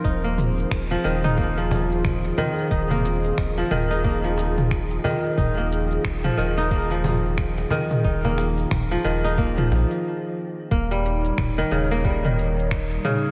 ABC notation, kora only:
X:1
M:4/4
L:1/16
Q:"Swing 16ths" 1/4=90
K:Ebmix
V:1 name="Kora" clef=bass
E B,4 F, E, E B, F,4 z E,2 | E B,4 F, E, E B, F,4 z E,2 | E B,4 F, E, E B, F,4 z E,2 | E B,4 F, E, E B, F, z6 |
B, G,4 E, D, B, G, E,4 z D,2 |]